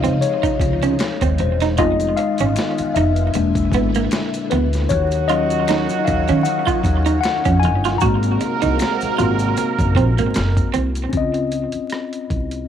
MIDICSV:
0, 0, Header, 1, 9, 480
1, 0, Start_track
1, 0, Key_signature, -5, "major"
1, 0, Tempo, 779221
1, 1099, Time_signature, 4, 2, 24, 8
1, 7811, End_track
2, 0, Start_track
2, 0, Title_t, "Tine electric piano"
2, 0, Program_c, 0, 4
2, 0, Control_c, 0, 64, 127
2, 0, Note_on_c, 0, 48, 48
2, 0, Note_on_c, 0, 53, 56
2, 0, Note_on_c, 0, 63, 59
2, 0, Note_on_c, 0, 73, 89
2, 0, Note_on_c, 0, 75, 86
2, 0, Note_on_c, 0, 77, 104
2, 131, Note_off_c, 0, 73, 0
2, 131, Note_on_c, 0, 73, 76
2, 150, Note_off_c, 0, 77, 0
2, 590, Note_off_c, 0, 73, 0
2, 865, Note_on_c, 0, 72, 74
2, 972, Note_off_c, 0, 72, 0
2, 1074, Note_off_c, 0, 53, 0
2, 1075, Note_off_c, 0, 48, 0
2, 1078, Note_off_c, 0, 63, 0
2, 1097, Note_on_c, 0, 56, 55
2, 1099, Note_off_c, 0, 75, 0
2, 1099, Note_on_c, 0, 75, 94
2, 1101, Note_on_c, 0, 59, 50
2, 1105, Note_on_c, 0, 63, 59
2, 1108, Control_c, 0, 64, 0
2, 1203, Control_c, 0, 64, 127
2, 1334, Note_on_c, 0, 77, 99
2, 1346, Note_off_c, 0, 75, 0
2, 1427, Note_off_c, 0, 56, 0
2, 1429, Note_off_c, 0, 59, 0
2, 1431, Note_off_c, 0, 63, 0
2, 1814, Note_on_c, 0, 76, 82
2, 1831, Note_off_c, 0, 77, 0
2, 2065, Note_on_c, 0, 56, 53
2, 2068, Control_c, 0, 64, 0
2, 2069, Note_on_c, 0, 58, 52
2, 2071, Note_on_c, 0, 62, 57
2, 2176, Control_c, 0, 64, 127
2, 2272, Note_off_c, 0, 76, 0
2, 2391, Note_off_c, 0, 56, 0
2, 2394, Note_off_c, 0, 58, 0
2, 2394, Note_off_c, 0, 62, 0
2, 2774, Note_on_c, 0, 71, 72
2, 3013, Note_on_c, 0, 73, 85
2, 3024, Note_off_c, 0, 71, 0
2, 3028, Control_c, 0, 64, 0
2, 3136, Control_c, 0, 64, 127
2, 3251, Note_on_c, 0, 75, 91
2, 3263, Note_on_c, 0, 54, 59
2, 3264, Note_off_c, 0, 73, 0
2, 3264, Note_on_c, 0, 61, 49
2, 3270, Note_on_c, 0, 65, 60
2, 3590, Note_off_c, 0, 54, 0
2, 3591, Note_off_c, 0, 61, 0
2, 3594, Note_off_c, 0, 65, 0
2, 3726, Note_on_c, 0, 77, 80
2, 3750, Note_off_c, 0, 75, 0
2, 3963, Note_on_c, 0, 78, 98
2, 3980, Note_off_c, 0, 77, 0
2, 4432, Note_off_c, 0, 78, 0
2, 4439, Note_on_c, 0, 78, 97
2, 4679, Note_on_c, 0, 80, 97
2, 4697, Note_off_c, 0, 78, 0
2, 4917, Note_on_c, 0, 82, 97
2, 4936, Note_off_c, 0, 80, 0
2, 4936, Note_on_c, 0, 58, 54
2, 4940, Note_on_c, 0, 60, 50
2, 4942, Note_on_c, 0, 66, 60
2, 4947, Control_c, 0, 64, 0
2, 5054, Control_c, 0, 64, 127
2, 5633, Note_off_c, 0, 58, 0
2, 5635, Note_off_c, 0, 60, 0
2, 5636, Note_off_c, 0, 66, 0
2, 5658, Note_on_c, 0, 58, 47
2, 5662, Note_on_c, 0, 60, 43
2, 5663, Note_on_c, 0, 66, 52
2, 5874, Note_off_c, 0, 58, 0
2, 5877, Note_off_c, 0, 60, 0
2, 5877, Note_off_c, 0, 66, 0
2, 6343, Note_off_c, 0, 82, 0
2, 6832, Note_on_c, 0, 61, 62
2, 6847, Note_on_c, 0, 60, 56
2, 6865, Note_on_c, 0, 65, 57
2, 6867, Control_c, 0, 64, 0
2, 6882, Note_on_c, 0, 75, 68
2, 6981, Control_c, 0, 64, 127
2, 7811, Note_off_c, 0, 60, 0
2, 7811, Note_off_c, 0, 61, 0
2, 7811, Note_off_c, 0, 65, 0
2, 7811, Note_off_c, 0, 75, 0
2, 7811, End_track
3, 0, Start_track
3, 0, Title_t, "Clean electric guitar"
3, 0, Program_c, 1, 27
3, 22, Note_on_c, 1, 60, 74
3, 99, Note_off_c, 1, 60, 0
3, 266, Note_on_c, 1, 63, 78
3, 341, Note_off_c, 1, 63, 0
3, 511, Note_on_c, 1, 61, 75
3, 584, Note_off_c, 1, 61, 0
3, 752, Note_on_c, 1, 60, 70
3, 825, Note_off_c, 1, 60, 0
3, 996, Note_on_c, 1, 63, 69
3, 1068, Note_off_c, 1, 63, 0
3, 1099, Note_on_c, 1, 65, 80
3, 1190, Note_off_c, 1, 65, 0
3, 1482, Note_on_c, 1, 61, 69
3, 1552, Note_off_c, 1, 61, 0
3, 1829, Note_on_c, 1, 63, 70
3, 1917, Note_off_c, 1, 63, 0
3, 2306, Note_on_c, 1, 59, 76
3, 2395, Note_off_c, 1, 59, 0
3, 2438, Note_on_c, 1, 58, 73
3, 2509, Note_off_c, 1, 58, 0
3, 2784, Note_on_c, 1, 59, 80
3, 2873, Note_off_c, 1, 59, 0
3, 3263, Note_on_c, 1, 65, 86
3, 3352, Note_off_c, 1, 65, 0
3, 3505, Note_on_c, 1, 63, 76
3, 3594, Note_off_c, 1, 63, 0
3, 3875, Note_on_c, 1, 61, 76
3, 3947, Note_off_c, 1, 61, 0
3, 4107, Note_on_c, 1, 65, 89
3, 4182, Note_off_c, 1, 65, 0
3, 4348, Note_on_c, 1, 63, 80
3, 4423, Note_off_c, 1, 63, 0
3, 4591, Note_on_c, 1, 61, 75
3, 4665, Note_off_c, 1, 61, 0
3, 4837, Note_on_c, 1, 65, 75
3, 4909, Note_off_c, 1, 65, 0
3, 4938, Note_on_c, 1, 66, 81
3, 5029, Note_off_c, 1, 66, 0
3, 5309, Note_on_c, 1, 63, 72
3, 5384, Note_off_c, 1, 63, 0
3, 5657, Note_on_c, 1, 65, 70
3, 5749, Note_off_c, 1, 65, 0
3, 6138, Note_on_c, 1, 60, 82
3, 6229, Note_off_c, 1, 60, 0
3, 6275, Note_on_c, 1, 58, 69
3, 6348, Note_off_c, 1, 58, 0
3, 6614, Note_on_c, 1, 60, 75
3, 6706, Note_off_c, 1, 60, 0
3, 7811, End_track
4, 0, Start_track
4, 0, Title_t, "Horn section"
4, 0, Program_c, 2, 61
4, 3021, Note_on_c, 2, 58, 72
4, 3022, Note_on_c, 2, 54, 73
4, 3022, Note_on_c, 2, 66, 80
4, 3023, Note_on_c, 2, 49, 71
4, 4675, Note_off_c, 2, 58, 0
4, 4676, Note_off_c, 2, 49, 0
4, 4676, Note_off_c, 2, 54, 0
4, 4676, Note_off_c, 2, 66, 0
4, 4941, Note_on_c, 2, 58, 76
4, 4941, Note_on_c, 2, 63, 71
4, 4941, Note_on_c, 2, 70, 83
4, 4942, Note_on_c, 2, 54, 71
4, 6595, Note_off_c, 2, 58, 0
4, 6595, Note_off_c, 2, 70, 0
4, 6596, Note_off_c, 2, 54, 0
4, 6596, Note_off_c, 2, 63, 0
4, 7811, End_track
5, 0, Start_track
5, 0, Title_t, "String machine"
5, 0, Program_c, 3, 50
5, 0, Note_on_c, 3, 48, 81
5, 0, Note_on_c, 3, 53, 76
5, 0, Note_on_c, 3, 56, 75
5, 0, Note_on_c, 3, 63, 88
5, 1077, Note_off_c, 3, 48, 0
5, 1077, Note_off_c, 3, 56, 0
5, 1078, Note_off_c, 3, 63, 0
5, 1079, Note_off_c, 3, 53, 0
5, 1100, Note_on_c, 3, 56, 77
5, 1101, Note_on_c, 3, 65, 90
5, 1102, Note_on_c, 3, 59, 74
5, 1104, Note_on_c, 3, 51, 84
5, 2051, Note_off_c, 3, 59, 0
5, 2051, Note_off_c, 3, 65, 0
5, 2052, Note_off_c, 3, 51, 0
5, 2060, Note_on_c, 3, 50, 80
5, 2062, Note_on_c, 3, 64, 84
5, 2063, Note_on_c, 3, 46, 69
5, 3001, Note_off_c, 3, 56, 0
5, 3010, Note_off_c, 3, 50, 0
5, 3011, Note_off_c, 3, 46, 0
5, 3011, Note_off_c, 3, 64, 0
5, 3017, Note_on_c, 3, 51, 82
5, 3017, Note_on_c, 3, 61, 75
5, 3019, Note_on_c, 3, 54, 73
5, 3020, Note_on_c, 3, 63, 89
5, 4919, Note_off_c, 3, 51, 0
5, 4919, Note_off_c, 3, 61, 0
5, 4920, Note_off_c, 3, 54, 0
5, 4920, Note_off_c, 3, 63, 0
5, 4938, Note_on_c, 3, 58, 72
5, 4939, Note_on_c, 3, 66, 91
5, 4940, Note_on_c, 3, 48, 86
5, 4940, Note_on_c, 3, 56, 78
5, 6840, Note_off_c, 3, 48, 0
5, 6840, Note_off_c, 3, 56, 0
5, 6840, Note_off_c, 3, 58, 0
5, 6840, Note_off_c, 3, 66, 0
5, 7811, End_track
6, 0, Start_track
6, 0, Title_t, "Upright bass"
6, 0, Program_c, 4, 32
6, 36, Note_on_c, 4, 49, 91
6, 123, Note_off_c, 4, 49, 0
6, 371, Note_on_c, 4, 37, 80
6, 573, Note_off_c, 4, 37, 0
6, 752, Note_on_c, 4, 39, 87
6, 841, Note_off_c, 4, 39, 0
6, 858, Note_on_c, 4, 28, 85
6, 1102, Note_off_c, 4, 28, 0
6, 1102, Note_on_c, 4, 29, 93
6, 1300, Note_off_c, 4, 29, 0
6, 1480, Note_on_c, 4, 32, 86
6, 1565, Note_off_c, 4, 32, 0
6, 1823, Note_on_c, 4, 29, 87
6, 2021, Note_off_c, 4, 29, 0
6, 2064, Note_on_c, 4, 28, 89
6, 2261, Note_off_c, 4, 28, 0
6, 2293, Note_on_c, 4, 32, 85
6, 2494, Note_off_c, 4, 32, 0
6, 2788, Note_on_c, 4, 38, 93
6, 2984, Note_off_c, 4, 38, 0
6, 3026, Note_on_c, 4, 39, 108
6, 3611, Note_off_c, 4, 39, 0
6, 3747, Note_on_c, 4, 39, 87
6, 3854, Note_off_c, 4, 39, 0
6, 3878, Note_on_c, 4, 51, 100
6, 3964, Note_off_c, 4, 51, 0
6, 4213, Note_on_c, 4, 39, 89
6, 4415, Note_off_c, 4, 39, 0
6, 4597, Note_on_c, 4, 41, 91
6, 4705, Note_on_c, 4, 31, 88
6, 4714, Note_off_c, 4, 41, 0
6, 4902, Note_off_c, 4, 31, 0
6, 4943, Note_on_c, 4, 32, 98
6, 5141, Note_off_c, 4, 32, 0
6, 5317, Note_on_c, 4, 36, 83
6, 5404, Note_off_c, 4, 36, 0
6, 5665, Note_on_c, 4, 32, 92
6, 5862, Note_off_c, 4, 32, 0
6, 6031, Note_on_c, 4, 30, 90
6, 6120, Note_off_c, 4, 30, 0
6, 6133, Note_on_c, 4, 34, 87
6, 6246, Note_off_c, 4, 34, 0
6, 6278, Note_on_c, 4, 32, 83
6, 6365, Note_off_c, 4, 32, 0
6, 6387, Note_on_c, 4, 30, 83
6, 6494, Note_off_c, 4, 30, 0
6, 6624, Note_on_c, 4, 36, 88
6, 6821, Note_off_c, 4, 36, 0
6, 6859, Note_on_c, 4, 37, 83
6, 7169, Note_off_c, 4, 37, 0
6, 7581, Note_on_c, 4, 36, 75
6, 7780, Note_off_c, 4, 36, 0
6, 7811, End_track
7, 0, Start_track
7, 0, Title_t, "Muted clean electric guitar strokes"
7, 376, Note_on_c, 9, 29, 43
7, 437, Note_off_c, 9, 29, 0
7, 862, Note_on_c, 9, 29, 41
7, 924, Note_off_c, 9, 29, 0
7, 1347, Note_on_c, 9, 29, 40
7, 1408, Note_off_c, 9, 29, 0
7, 2065, Note_on_c, 9, 29, 43
7, 2126, Note_off_c, 9, 29, 0
7, 3743, Note_on_c, 9, 29, 45
7, 3805, Note_off_c, 9, 29, 0
7, 4217, Note_on_c, 9, 29, 43
7, 4279, Note_off_c, 9, 29, 0
7, 4711, Note_on_c, 9, 29, 46
7, 4773, Note_off_c, 9, 29, 0
7, 5179, Note_on_c, 9, 29, 41
7, 5241, Note_off_c, 9, 29, 0
7, 5899, Note_on_c, 9, 29, 39
7, 5961, Note_off_c, 9, 29, 0
7, 7811, End_track
8, 0, Start_track
8, 0, Title_t, "Muted upright bass strokes"
8, 271, Note_on_c, 9, 29, 44
8, 333, Note_off_c, 9, 29, 0
8, 1719, Note_on_c, 9, 29, 47
8, 1781, Note_off_c, 9, 29, 0
8, 4114, Note_on_c, 9, 29, 49
8, 4176, Note_off_c, 9, 29, 0
8, 5560, Note_on_c, 9, 29, 48
8, 5621, Note_off_c, 9, 29, 0
8, 7236, Note_on_c, 9, 29, 37
8, 7297, Note_off_c, 9, 29, 0
8, 7811, End_track
9, 0, Start_track
9, 0, Title_t, "Drums"
9, 27, Note_on_c, 9, 42, 40
9, 28, Note_on_c, 9, 82, 45
9, 88, Note_off_c, 9, 42, 0
9, 89, Note_off_c, 9, 82, 0
9, 137, Note_on_c, 9, 42, 79
9, 137, Note_on_c, 9, 82, 70
9, 199, Note_off_c, 9, 42, 0
9, 199, Note_off_c, 9, 82, 0
9, 267, Note_on_c, 9, 36, 77
9, 268, Note_on_c, 9, 42, 43
9, 276, Note_on_c, 9, 82, 40
9, 329, Note_off_c, 9, 36, 0
9, 330, Note_off_c, 9, 42, 0
9, 338, Note_off_c, 9, 82, 0
9, 367, Note_on_c, 9, 36, 97
9, 376, Note_on_c, 9, 82, 44
9, 377, Note_on_c, 9, 42, 60
9, 428, Note_off_c, 9, 36, 0
9, 437, Note_off_c, 9, 82, 0
9, 439, Note_off_c, 9, 42, 0
9, 508, Note_on_c, 9, 42, 43
9, 511, Note_on_c, 9, 82, 47
9, 570, Note_off_c, 9, 42, 0
9, 573, Note_off_c, 9, 82, 0
9, 609, Note_on_c, 9, 42, 62
9, 617, Note_on_c, 9, 26, 60
9, 617, Note_on_c, 9, 82, 59
9, 620, Note_on_c, 9, 38, 105
9, 671, Note_off_c, 9, 42, 0
9, 679, Note_off_c, 9, 26, 0
9, 679, Note_off_c, 9, 82, 0
9, 682, Note_off_c, 9, 38, 0
9, 747, Note_on_c, 9, 42, 47
9, 748, Note_on_c, 9, 36, 92
9, 753, Note_on_c, 9, 82, 49
9, 808, Note_off_c, 9, 42, 0
9, 810, Note_off_c, 9, 36, 0
9, 815, Note_off_c, 9, 82, 0
9, 853, Note_on_c, 9, 42, 61
9, 914, Note_off_c, 9, 42, 0
9, 988, Note_on_c, 9, 42, 42
9, 996, Note_on_c, 9, 82, 48
9, 1000, Note_on_c, 9, 38, 29
9, 1050, Note_off_c, 9, 42, 0
9, 1058, Note_off_c, 9, 82, 0
9, 1062, Note_off_c, 9, 38, 0
9, 1093, Note_on_c, 9, 82, 61
9, 1094, Note_on_c, 9, 42, 79
9, 1098, Note_on_c, 9, 36, 107
9, 1155, Note_off_c, 9, 82, 0
9, 1156, Note_off_c, 9, 42, 0
9, 1160, Note_off_c, 9, 36, 0
9, 1230, Note_on_c, 9, 42, 39
9, 1233, Note_on_c, 9, 82, 50
9, 1292, Note_off_c, 9, 42, 0
9, 1295, Note_off_c, 9, 82, 0
9, 1339, Note_on_c, 9, 42, 68
9, 1400, Note_off_c, 9, 42, 0
9, 1466, Note_on_c, 9, 42, 47
9, 1474, Note_on_c, 9, 82, 51
9, 1528, Note_off_c, 9, 42, 0
9, 1535, Note_off_c, 9, 82, 0
9, 1576, Note_on_c, 9, 42, 70
9, 1579, Note_on_c, 9, 26, 64
9, 1579, Note_on_c, 9, 82, 66
9, 1593, Note_on_c, 9, 38, 106
9, 1637, Note_off_c, 9, 42, 0
9, 1641, Note_off_c, 9, 26, 0
9, 1641, Note_off_c, 9, 82, 0
9, 1654, Note_off_c, 9, 38, 0
9, 1712, Note_on_c, 9, 82, 44
9, 1715, Note_on_c, 9, 42, 53
9, 1773, Note_off_c, 9, 82, 0
9, 1777, Note_off_c, 9, 42, 0
9, 1821, Note_on_c, 9, 82, 38
9, 1822, Note_on_c, 9, 42, 52
9, 1883, Note_off_c, 9, 82, 0
9, 1884, Note_off_c, 9, 42, 0
9, 1948, Note_on_c, 9, 42, 41
9, 1949, Note_on_c, 9, 82, 44
9, 2010, Note_off_c, 9, 42, 0
9, 2010, Note_off_c, 9, 82, 0
9, 2055, Note_on_c, 9, 42, 81
9, 2061, Note_on_c, 9, 82, 67
9, 2117, Note_off_c, 9, 42, 0
9, 2122, Note_off_c, 9, 82, 0
9, 2188, Note_on_c, 9, 36, 82
9, 2190, Note_on_c, 9, 42, 43
9, 2197, Note_on_c, 9, 82, 41
9, 2250, Note_off_c, 9, 36, 0
9, 2251, Note_off_c, 9, 42, 0
9, 2258, Note_off_c, 9, 82, 0
9, 2289, Note_on_c, 9, 36, 95
9, 2297, Note_on_c, 9, 82, 43
9, 2300, Note_on_c, 9, 42, 63
9, 2350, Note_off_c, 9, 36, 0
9, 2359, Note_off_c, 9, 82, 0
9, 2361, Note_off_c, 9, 42, 0
9, 2431, Note_on_c, 9, 82, 45
9, 2432, Note_on_c, 9, 42, 44
9, 2493, Note_off_c, 9, 82, 0
9, 2494, Note_off_c, 9, 42, 0
9, 2532, Note_on_c, 9, 42, 66
9, 2537, Note_on_c, 9, 26, 62
9, 2537, Note_on_c, 9, 82, 62
9, 2543, Note_on_c, 9, 38, 113
9, 2594, Note_off_c, 9, 42, 0
9, 2598, Note_off_c, 9, 26, 0
9, 2598, Note_off_c, 9, 82, 0
9, 2605, Note_off_c, 9, 38, 0
9, 2672, Note_on_c, 9, 42, 50
9, 2672, Note_on_c, 9, 82, 47
9, 2734, Note_off_c, 9, 42, 0
9, 2734, Note_off_c, 9, 82, 0
9, 2778, Note_on_c, 9, 42, 60
9, 2839, Note_off_c, 9, 42, 0
9, 2914, Note_on_c, 9, 42, 44
9, 2917, Note_on_c, 9, 82, 47
9, 2926, Note_on_c, 9, 38, 31
9, 2976, Note_off_c, 9, 42, 0
9, 2979, Note_off_c, 9, 82, 0
9, 2988, Note_off_c, 9, 38, 0
9, 3014, Note_on_c, 9, 82, 64
9, 3021, Note_on_c, 9, 36, 109
9, 3021, Note_on_c, 9, 42, 80
9, 3076, Note_off_c, 9, 82, 0
9, 3083, Note_off_c, 9, 36, 0
9, 3083, Note_off_c, 9, 42, 0
9, 3150, Note_on_c, 9, 82, 50
9, 3153, Note_on_c, 9, 42, 40
9, 3211, Note_off_c, 9, 82, 0
9, 3215, Note_off_c, 9, 42, 0
9, 3261, Note_on_c, 9, 42, 68
9, 3322, Note_off_c, 9, 42, 0
9, 3390, Note_on_c, 9, 42, 46
9, 3392, Note_on_c, 9, 82, 50
9, 3452, Note_off_c, 9, 42, 0
9, 3454, Note_off_c, 9, 82, 0
9, 3498, Note_on_c, 9, 42, 69
9, 3499, Note_on_c, 9, 26, 69
9, 3499, Note_on_c, 9, 82, 68
9, 3515, Note_on_c, 9, 38, 102
9, 3560, Note_off_c, 9, 26, 0
9, 3560, Note_off_c, 9, 42, 0
9, 3560, Note_off_c, 9, 82, 0
9, 3577, Note_off_c, 9, 38, 0
9, 3629, Note_on_c, 9, 82, 47
9, 3638, Note_on_c, 9, 42, 51
9, 3691, Note_off_c, 9, 82, 0
9, 3700, Note_off_c, 9, 42, 0
9, 3740, Note_on_c, 9, 82, 39
9, 3743, Note_on_c, 9, 36, 87
9, 3743, Note_on_c, 9, 42, 58
9, 3802, Note_off_c, 9, 82, 0
9, 3804, Note_off_c, 9, 42, 0
9, 3805, Note_off_c, 9, 36, 0
9, 3868, Note_on_c, 9, 82, 45
9, 3873, Note_on_c, 9, 42, 44
9, 3929, Note_off_c, 9, 82, 0
9, 3935, Note_off_c, 9, 42, 0
9, 3973, Note_on_c, 9, 82, 71
9, 3979, Note_on_c, 9, 42, 81
9, 4034, Note_off_c, 9, 82, 0
9, 4041, Note_off_c, 9, 42, 0
9, 4110, Note_on_c, 9, 36, 77
9, 4114, Note_on_c, 9, 42, 43
9, 4114, Note_on_c, 9, 82, 43
9, 4172, Note_off_c, 9, 36, 0
9, 4176, Note_off_c, 9, 42, 0
9, 4176, Note_off_c, 9, 82, 0
9, 4211, Note_on_c, 9, 36, 101
9, 4215, Note_on_c, 9, 82, 43
9, 4224, Note_on_c, 9, 42, 61
9, 4272, Note_off_c, 9, 36, 0
9, 4276, Note_off_c, 9, 82, 0
9, 4286, Note_off_c, 9, 42, 0
9, 4348, Note_on_c, 9, 82, 46
9, 4355, Note_on_c, 9, 42, 45
9, 4409, Note_off_c, 9, 82, 0
9, 4416, Note_off_c, 9, 42, 0
9, 4457, Note_on_c, 9, 26, 62
9, 4457, Note_on_c, 9, 42, 64
9, 4457, Note_on_c, 9, 82, 63
9, 4468, Note_on_c, 9, 38, 112
9, 4518, Note_off_c, 9, 26, 0
9, 4518, Note_off_c, 9, 42, 0
9, 4518, Note_off_c, 9, 82, 0
9, 4529, Note_off_c, 9, 38, 0
9, 4589, Note_on_c, 9, 82, 46
9, 4593, Note_on_c, 9, 36, 95
9, 4595, Note_on_c, 9, 42, 53
9, 4650, Note_off_c, 9, 82, 0
9, 4654, Note_off_c, 9, 36, 0
9, 4657, Note_off_c, 9, 42, 0
9, 4700, Note_on_c, 9, 42, 62
9, 4762, Note_off_c, 9, 42, 0
9, 4834, Note_on_c, 9, 42, 44
9, 4836, Note_on_c, 9, 82, 49
9, 4847, Note_on_c, 9, 38, 31
9, 4896, Note_off_c, 9, 42, 0
9, 4898, Note_off_c, 9, 82, 0
9, 4908, Note_off_c, 9, 38, 0
9, 4932, Note_on_c, 9, 82, 61
9, 4940, Note_on_c, 9, 36, 111
9, 4940, Note_on_c, 9, 42, 76
9, 4993, Note_off_c, 9, 82, 0
9, 5002, Note_off_c, 9, 36, 0
9, 5002, Note_off_c, 9, 42, 0
9, 5069, Note_on_c, 9, 42, 42
9, 5073, Note_on_c, 9, 82, 49
9, 5131, Note_off_c, 9, 42, 0
9, 5134, Note_off_c, 9, 82, 0
9, 5178, Note_on_c, 9, 82, 39
9, 5179, Note_on_c, 9, 42, 67
9, 5240, Note_off_c, 9, 42, 0
9, 5240, Note_off_c, 9, 82, 0
9, 5308, Note_on_c, 9, 42, 45
9, 5311, Note_on_c, 9, 82, 51
9, 5370, Note_off_c, 9, 42, 0
9, 5373, Note_off_c, 9, 82, 0
9, 5416, Note_on_c, 9, 42, 73
9, 5420, Note_on_c, 9, 26, 66
9, 5420, Note_on_c, 9, 82, 67
9, 5433, Note_on_c, 9, 38, 103
9, 5478, Note_off_c, 9, 42, 0
9, 5481, Note_off_c, 9, 26, 0
9, 5481, Note_off_c, 9, 82, 0
9, 5495, Note_off_c, 9, 38, 0
9, 5549, Note_on_c, 9, 82, 47
9, 5557, Note_on_c, 9, 42, 52
9, 5611, Note_off_c, 9, 82, 0
9, 5619, Note_off_c, 9, 42, 0
9, 5659, Note_on_c, 9, 82, 40
9, 5664, Note_on_c, 9, 42, 53
9, 5720, Note_off_c, 9, 82, 0
9, 5726, Note_off_c, 9, 42, 0
9, 5784, Note_on_c, 9, 82, 47
9, 5792, Note_on_c, 9, 42, 43
9, 5846, Note_off_c, 9, 82, 0
9, 5854, Note_off_c, 9, 42, 0
9, 5894, Note_on_c, 9, 82, 68
9, 5898, Note_on_c, 9, 42, 78
9, 5956, Note_off_c, 9, 82, 0
9, 5959, Note_off_c, 9, 42, 0
9, 6028, Note_on_c, 9, 36, 80
9, 6032, Note_on_c, 9, 42, 43
9, 6038, Note_on_c, 9, 82, 42
9, 6090, Note_off_c, 9, 36, 0
9, 6094, Note_off_c, 9, 42, 0
9, 6099, Note_off_c, 9, 82, 0
9, 6129, Note_on_c, 9, 36, 97
9, 6144, Note_on_c, 9, 42, 65
9, 6190, Note_off_c, 9, 36, 0
9, 6206, Note_off_c, 9, 42, 0
9, 6272, Note_on_c, 9, 82, 48
9, 6273, Note_on_c, 9, 42, 46
9, 6334, Note_off_c, 9, 42, 0
9, 6334, Note_off_c, 9, 82, 0
9, 6371, Note_on_c, 9, 42, 63
9, 6381, Note_on_c, 9, 26, 60
9, 6381, Note_on_c, 9, 82, 64
9, 6382, Note_on_c, 9, 38, 107
9, 6433, Note_off_c, 9, 42, 0
9, 6442, Note_off_c, 9, 26, 0
9, 6442, Note_off_c, 9, 82, 0
9, 6444, Note_off_c, 9, 38, 0
9, 6510, Note_on_c, 9, 36, 93
9, 6512, Note_on_c, 9, 42, 47
9, 6514, Note_on_c, 9, 82, 47
9, 6571, Note_off_c, 9, 36, 0
9, 6574, Note_off_c, 9, 42, 0
9, 6575, Note_off_c, 9, 82, 0
9, 6614, Note_on_c, 9, 42, 60
9, 6615, Note_on_c, 9, 82, 44
9, 6675, Note_off_c, 9, 42, 0
9, 6677, Note_off_c, 9, 82, 0
9, 6747, Note_on_c, 9, 42, 46
9, 6753, Note_on_c, 9, 82, 47
9, 6809, Note_off_c, 9, 42, 0
9, 6815, Note_off_c, 9, 82, 0
9, 6854, Note_on_c, 9, 42, 68
9, 6856, Note_on_c, 9, 36, 87
9, 6916, Note_off_c, 9, 42, 0
9, 6918, Note_off_c, 9, 36, 0
9, 6987, Note_on_c, 9, 42, 31
9, 7048, Note_off_c, 9, 42, 0
9, 7095, Note_on_c, 9, 42, 61
9, 7156, Note_off_c, 9, 42, 0
9, 7221, Note_on_c, 9, 42, 38
9, 7282, Note_off_c, 9, 42, 0
9, 7329, Note_on_c, 9, 42, 53
9, 7346, Note_on_c, 9, 37, 91
9, 7390, Note_off_c, 9, 42, 0
9, 7407, Note_off_c, 9, 37, 0
9, 7471, Note_on_c, 9, 42, 42
9, 7532, Note_off_c, 9, 42, 0
9, 7579, Note_on_c, 9, 36, 69
9, 7581, Note_on_c, 9, 42, 45
9, 7640, Note_off_c, 9, 36, 0
9, 7643, Note_off_c, 9, 42, 0
9, 7708, Note_on_c, 9, 42, 37
9, 7770, Note_off_c, 9, 42, 0
9, 7811, End_track
0, 0, End_of_file